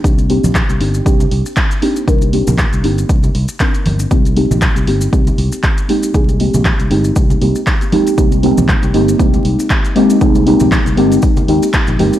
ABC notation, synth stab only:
X:1
M:4/4
L:1/8
Q:"Swing 16ths" 1/4=118
K:Ablyd
V:1 name="Synth stab"
[B,CDEG] [B,CDEG]2 [B,CDEG] [B,CDEG]3 [B,CDEG] | [B,CDEB] [B,CDEG] z [B,CDEG]2 z [B,CDEB]2 | [A,B,CEG] [A,B,CEG]2 [A,B,CEG] [A,B,CEG]3 [A,B,CEG] | [A,B,CEA] [A,B,CEG] z [A,B,CEG]2 [A,B,CEG] z [A,B,CEG] |
[A,B,CEG] [A,B,CEG]2 [A,B,CEG] [A,B,CEG]3 [A,B,CEG] | [A,B,CEA] [A,B,CEG] z [A,B,CEG]2 [A,B,CEG] z [A,B,CEG] |]